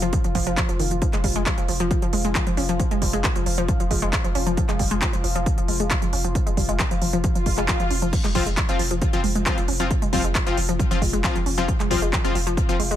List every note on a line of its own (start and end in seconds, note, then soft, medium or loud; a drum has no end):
0.00 0.13 F1 medium
0.00 8.12 F3 medium
0.00 0.07 F3 loud
0.00 8.12 F4 medium
0.00 closed hi-hat medium
0.13 0.21 F3 medium
0.13 kick loud
0.13 closed hi-hat medium
0.24 0.35 F1 medium
0.24 0.32 F3 medium
0.24 closed hi-hat soft
0.35 0.46 F1 loud
0.35 0.41 F3 loud
0.35 kick medium
0.35 open hi-hat loud
0.47 0.57 F1 medium
0.47 0.50 F3 loud
0.47 closed hi-hat soft
0.57 0.61 F3 loud
0.57 kick loud
0.57 clap loud
0.57 closed hi-hat medium
0.69 0.79 F1 medium
0.69 0.74 F3 medium
0.69 closed hi-hat medium
0.79 0.90 F1 loud
0.79 0.85 D#3 medium
0.79 open hi-hat loud
0.91 1.02 F1 medium
0.91 0.96 F3 medium
0.91 closed hi-hat medium
1.02 1.10 F3 medium
1.02 kick loud
1.02 closed hi-hat medium
1.13 1.23 F1 medium
1.13 1.21 G#3 loud
1.13 clap soft
1.13 closed hi-hat soft
1.24 1.35 F1 loud
1.24 1.30 G3 medium
1.24 kick medium
1.24 open hi-hat loud
1.35 1.46 F1 medium
1.35 1.39 G#3 loud
1.35 closed hi-hat medium
1.46 1.50 F3 medium
1.46 kick loud
1.46 clap loud
1.46 closed hi-hat medium
1.58 1.68 F1 medium
1.58 1.61 F3 medium
1.58 closed hi-hat medium
1.68 1.79 F1 loud
1.68 1.74 F3 medium
1.68 open hi-hat loud
1.80 1.90 F1 medium
1.80 1.85 F3 loud
1.80 closed hi-hat medium
1.91 1.99 F3 medium
1.91 kick loud
1.91 closed hi-hat medium
2.02 2.12 F1 medium
2.02 2.10 F3 medium
2.02 closed hi-hat medium
2.13 2.24 F1 medium
2.13 2.16 G#3 medium
2.13 open hi-hat loud
2.24 2.35 F1 medium
2.24 2.28 G#3 loud
2.24 closed hi-hat soft
2.35 2.39 F3 medium
2.35 kick loud
2.35 clap loud
2.35 closed hi-hat medium
2.47 2.57 F1 medium
2.47 2.50 F3 medium
2.47 closed hi-hat medium
2.57 2.68 F1 loud
2.57 2.63 C#4 medium
2.57 open hi-hat loud
2.69 2.79 F1 medium
2.69 2.74 F3 loud
2.69 closed hi-hat medium
2.79 2.88 F3 medium
2.79 kick loud
2.79 closed hi-hat medium
2.91 3.01 F1 medium
2.91 2.99 G#3 loud
2.91 closed hi-hat medium
3.02 3.13 F1 loud
3.02 3.07 G3 medium
3.02 kick medium
3.02 open hi-hat loud
3.13 3.24 F1 medium
3.13 3.16 G#3 loud
3.13 closed hi-hat medium
3.24 3.27 F3 medium
3.24 kick loud
3.24 clap loud
3.24 closed hi-hat medium
3.36 3.46 F1 medium
3.36 3.39 F3 medium
3.36 closed hi-hat soft
3.46 3.57 F1 loud
3.46 3.52 F3 medium
3.46 open hi-hat loud
3.58 3.68 F1 medium
3.58 3.63 F3 loud
3.58 closed hi-hat medium
3.68 3.77 F3 medium
3.68 kick loud
3.68 closed hi-hat medium
3.80 3.90 F1 medium
3.80 3.88 F3 medium
3.80 closed hi-hat medium
3.91 4.02 F1 loud
3.91 3.94 G#3 medium
3.91 kick medium
3.91 open hi-hat loud
4.02 4.13 F1 medium
4.02 4.05 G#3 loud
4.02 closed hi-hat soft
4.13 4.16 F3 medium
4.13 kick loud
4.13 clap loud
4.13 closed hi-hat medium
4.24 4.35 F1 medium
4.24 4.27 F3 medium
4.24 closed hi-hat medium
4.35 4.46 F1 loud
4.35 4.41 C#4 medium
4.35 open hi-hat loud
4.47 4.57 F1 medium
4.47 4.52 F3 loud
4.47 closed hi-hat soft
4.57 4.65 F3 medium
4.57 kick loud
4.57 closed hi-hat medium
4.69 4.79 F1 medium
4.69 4.76 G#3 loud
4.69 clap soft
4.69 closed hi-hat medium
4.79 4.91 F1 loud
4.79 4.85 G3 medium
4.79 kick medium
4.79 open hi-hat loud
4.91 5.02 F1 medium
4.91 4.94 G#3 loud
4.91 closed hi-hat medium
5.02 5.05 F3 medium
5.02 kick loud
5.02 clap loud
5.02 closed hi-hat medium
5.13 5.23 F1 medium
5.13 5.16 F3 medium
5.13 closed hi-hat medium
5.24 5.35 F1 loud
5.24 5.29 F3 medium
5.24 open hi-hat loud
5.35 5.46 F1 medium
5.35 5.41 F3 loud
5.35 closed hi-hat medium
5.46 5.54 F3 medium
5.46 kick loud
5.46 closed hi-hat medium
5.58 5.68 F1 medium
5.58 5.65 F3 medium
5.58 closed hi-hat medium
5.68 5.79 F1 loud
5.68 5.72 G#3 medium
5.68 open hi-hat loud
5.80 5.90 F1 medium
5.80 5.83 G#3 loud
5.80 closed hi-hat soft
5.91 5.94 F3 medium
5.91 kick loud
5.91 clap loud
5.91 closed hi-hat medium
6.02 6.12 F1 medium
6.02 6.05 F3 medium
6.02 closed hi-hat soft
6.13 6.24 F1 loud
6.13 6.18 C#4 medium
6.13 open hi-hat loud
6.24 6.35 F1 medium
6.24 6.30 F3 medium
6.24 closed hi-hat soft
6.35 6.43 F3 medium
6.35 kick loud
6.35 closed hi-hat medium
6.47 6.57 F1 medium
6.47 6.54 G#3 loud
6.47 closed hi-hat medium
6.57 6.68 F1 loud
6.57 6.63 G3 medium
6.57 kick medium
6.57 open hi-hat loud
6.69 6.79 F1 medium
6.69 6.72 G#3 loud
6.69 closed hi-hat medium
6.79 6.83 F3 medium
6.79 kick loud
6.79 clap loud
6.79 closed hi-hat medium
6.91 7.01 F1 medium
6.91 6.94 F3 medium
6.91 closed hi-hat medium
7.02 7.13 F1 loud
7.02 7.07 F3 medium
7.02 open hi-hat loud
7.13 7.24 F1 medium
7.13 7.18 F3 loud
7.13 closed hi-hat medium
7.24 7.32 F3 medium
7.24 kick loud
7.24 closed hi-hat medium
7.24 swell medium
7.35 7.46 F1 medium
7.35 7.43 F3 medium
7.35 closed hi-hat medium
7.46 7.57 F1 medium
7.46 7.50 G#3 medium
7.46 kick medium
7.46 open hi-hat medium
7.58 7.68 F1 medium
7.58 7.61 G#3 loud
7.58 clap soft
7.58 closed hi-hat medium
7.68 7.72 F3 medium
7.68 kick loud
7.68 clap loud
7.68 closed hi-hat medium
7.80 7.90 F1 medium
7.80 7.83 F3 medium
7.80 closed hi-hat medium
7.91 8.02 F1 loud
7.91 7.96 C#4 medium
7.91 open hi-hat loud
8.02 8.13 F1 medium
8.02 8.07 F3 loud
8.02 closed hi-hat medium
8.13 8.21 F3 medium
8.13 12.96 F3 medium
8.13 12.96 F4 medium
8.13 kick loud
8.13 closed hi-hat medium
8.13 crash medium
8.24 8.34 F1 medium
8.24 8.32 G#3 loud
8.24 clap soft
8.24 closed hi-hat medium
8.35 8.46 F1 loud
8.35 8.43 F3 medium
8.35 8.41 G3 medium
8.35 8.43 C4 medium
8.35 8.43 F4 loud
8.35 kick medium
8.35 open hi-hat loud
8.46 8.57 F1 medium
8.46 8.50 G#3 loud
8.46 closed hi-hat medium
8.57 8.61 F3 medium
8.57 kick loud
8.57 clap loud
8.57 closed hi-hat medium
8.69 8.79 F1 medium
8.69 8.72 F3 medium
8.69 8.81 F3 medium
8.69 8.81 C4 medium
8.69 8.81 F4 loud
8.69 closed hi-hat medium
8.79 8.90 F1 loud
8.79 8.85 F3 medium
8.79 open hi-hat loud
8.91 9.02 F1 medium
8.91 8.96 F3 loud
8.91 closed hi-hat medium
9.01 9.10 F3 medium
9.01 kick loud
9.01 closed hi-hat medium
9.13 9.23 F1 medium
9.13 9.21 F3 medium
9.13 9.21 C4 medium
9.13 9.21 F4 medium
9.13 closed hi-hat medium
9.24 9.35 F1 medium
9.24 9.27 G#3 medium
9.24 open hi-hat loud
9.35 9.46 F1 medium
9.35 9.39 G#3 loud
9.35 closed hi-hat medium
9.46 9.49 F3 medium
9.46 9.59 F3 loud
9.46 9.59 C4 medium
9.46 9.59 F4 loud
9.46 kick loud
9.46 clap loud
9.46 closed hi-hat medium
9.58 9.68 F1 medium
9.58 9.61 F3 medium
9.58 closed hi-hat medium
9.68 9.80 F1 loud
9.68 9.74 C#4 medium
9.68 open hi-hat loud
9.80 9.91 F1 medium
9.80 9.85 F3 loud
9.80 9.88 F3 medium
9.80 9.88 C4 medium
9.80 9.88 F4 medium
9.80 closed hi-hat medium
9.91 9.99 F3 medium
9.91 kick loud
9.91 closed hi-hat medium
10.02 10.12 F1 medium
10.02 10.10 G#3 loud
10.02 closed hi-hat medium
10.13 10.24 F1 loud
10.13 10.21 F3 medium
10.13 10.18 G3 medium
10.13 10.21 C4 medium
10.13 10.21 F4 loud
10.13 kick medium
10.13 open hi-hat loud
10.24 10.35 F1 medium
10.24 10.27 G#3 loud
10.24 closed hi-hat medium
10.35 10.38 F3 medium
10.35 kick loud
10.35 clap loud
10.35 closed hi-hat medium
10.46 10.57 F1 medium
10.46 10.50 F3 medium
10.46 10.59 F3 medium
10.46 10.59 C4 medium
10.46 10.59 F4 medium
10.46 closed hi-hat medium
10.57 10.68 F1 loud
10.57 10.63 F3 medium
10.57 open hi-hat loud
10.69 10.79 F1 medium
10.69 10.74 F3 loud
10.69 closed hi-hat medium
10.79 10.88 F3 medium
10.79 kick loud
10.79 closed hi-hat medium
10.91 11.01 F1 medium
10.91 10.99 F3 medium
10.91 10.99 C4 medium
10.91 10.99 F4 medium
10.91 closed hi-hat medium
11.02 11.13 F1 loud
11.02 11.05 G#3 medium
11.02 kick medium
11.02 open hi-hat loud
11.13 11.24 F1 medium
11.13 11.16 G#3 loud
11.13 closed hi-hat medium
11.24 11.27 F3 medium
11.24 11.37 F3 loud
11.24 11.37 C4 medium
11.24 11.37 F4 loud
11.24 kick loud
11.24 clap loud
11.24 closed hi-hat medium
11.35 11.46 F1 medium
11.35 11.39 F3 medium
11.35 closed hi-hat medium
11.46 11.57 F1 loud
11.46 11.52 C#4 medium
11.46 open hi-hat loud
11.58 11.68 F1 medium
11.58 11.65 F3 medium
11.58 11.63 F3 loud
11.58 11.65 C4 medium
11.58 11.65 F4 medium
11.58 closed hi-hat medium
11.68 11.77 F3 medium
11.68 kick loud
11.68 closed hi-hat medium
11.80 11.90 F1 medium
11.80 11.88 G#3 loud
11.80 clap soft
11.80 closed hi-hat medium
11.91 12.01 F1 loud
11.91 11.99 F3 loud
11.91 11.96 G3 medium
11.91 11.99 C4 medium
11.91 11.99 F4 loud
11.91 kick medium
11.91 open hi-hat loud
12.02 12.13 F1 medium
12.02 12.05 G#3 loud
12.02 closed hi-hat medium
12.13 12.16 F3 medium
12.13 kick loud
12.13 clap loud
12.13 closed hi-hat medium
12.24 12.34 F1 medium
12.24 12.27 F3 medium
12.24 12.37 F3 medium
12.24 12.37 C4 medium
12.24 12.37 F4 loud
12.24 closed hi-hat medium
12.35 12.46 F1 loud
12.35 12.41 F3 medium
12.35 open hi-hat loud
12.47 12.57 F1 medium
12.47 12.52 F3 loud
12.47 closed hi-hat medium
12.57 12.66 F3 medium
12.57 kick loud
12.57 closed hi-hat medium
12.69 12.79 F1 medium
12.69 12.76 F3 medium
12.69 12.77 F3 medium
12.69 12.76 C4 medium
12.69 12.76 F4 medium
12.69 closed hi-hat medium
12.79 12.90 F1 loud
12.79 12.83 G#3 medium
12.79 open hi-hat loud
12.91 12.96 F1 medium
12.91 12.94 G#3 loud
12.91 closed hi-hat medium